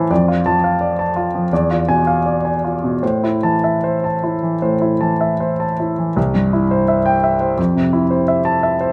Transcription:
Already playing: A2 E3 E4 C5 E5 A5
0.11 F2 D5
0.28 F4
0.46 F3 A5
0.64 F5
0.81 D5
0.99 A5
1.16 F4
1.35 F3
1.53 E2 D5
1.71 F4
1.89 B2 G#5
2.07 F5
2.26 D5
2.45 G#5
2.64 F4
2.84 B2
3.03 A2 C5
3.24 E4
3.43 E3 A5
3.64 E5
3.84 C5
4.04 A5
4.24 E4
4.43 E3
4.62 A2 C5
4.82 E4
5.01 E3 A5
5.21 E5
5.40 C5
5.60 A5
5.80 E4
5.99 E3
6.16 C2
6.35 G2
6.53 E4
6.71 C5
6.88 E5
7.06 G5
7.24 E5
7.41 C5
7.58 F2
7.76 C3
7.93 E4
8.11 C5
8.28 E5
8.45 A5
8.63 E5
8.81 C5

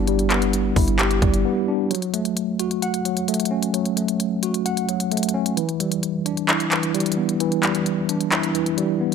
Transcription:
Already playing: G1 G3 B3 D4 E4 G4
0.07 G3, closed hi-hat
0.19 closed hi-hat
0.30 B3, clap, closed hi-hat
0.42 closed hi-hat
0.53 closed hi-hat
0.76 G1 E4, kick, open hi-hat
0.88 closed hi-hat
0.99 G4, clap, closed hi-hat
1.11 closed hi-hat
1.22 G1 G3, kick, closed hi-hat
1.34 closed hi-hat
1.45 B3
1.68 D4
1.91 F#3, closed hi-hat
1.95 closed hi-hat
2.02 closed hi-hat
2.14 A3, closed hi-hat
2.25 closed hi-hat
2.37 closed hi-hat
2.59 F#4, closed hi-hat
2.71 closed hi-hat
2.82 F#5, closed hi-hat
2.94 closed hi-hat
3.05 F#3, closed hi-hat
3.17 closed hi-hat
3.28 A3, closed hi-hat
3.34 closed hi-hat
3.40 closed hi-hat
3.45 closed hi-hat
3.51 C#4
3.63 closed hi-hat
3.74 F#3, closed hi-hat
3.85 closed hi-hat
3.97 A3, closed hi-hat
4.08 closed hi-hat
4.20 closed hi-hat
4.43 F#4, closed hi-hat
4.54 closed hi-hat
4.66 F#5, closed hi-hat
4.77 closed hi-hat
4.89 F#3, closed hi-hat
5.00 closed hi-hat
5.11 A3, closed hi-hat
5.17 closed hi-hat
5.23 closed hi-hat
5.29 closed hi-hat
5.34 C#4
5.46 closed hi-hat
5.57 E3, closed hi-hat
5.69 closed hi-hat
5.80 G3, closed hi-hat
5.92 closed hi-hat
6.03 closed hi-hat
6.26 D4, closed hi-hat
6.37 closed hi-hat
6.49 E4, clap, closed hi-hat
6.60 closed hi-hat
6.72 E3, clap, closed hi-hat
6.83 closed hi-hat
6.94 G3, closed hi-hat
7.00 closed hi-hat
7.06 closed hi-hat
7.12 closed hi-hat
7.17 B3
7.29 closed hi-hat
7.40 E3, closed hi-hat
7.52 closed hi-hat
7.63 G3, clap, closed hi-hat
7.75 closed hi-hat
7.86 closed hi-hat
8.09 D4, closed hi-hat
8.21 closed hi-hat
8.32 E4, clap, closed hi-hat
8.43 closed hi-hat
8.55 E3, closed hi-hat
8.66 closed hi-hat
8.78 G3, closed hi-hat
9.01 B3

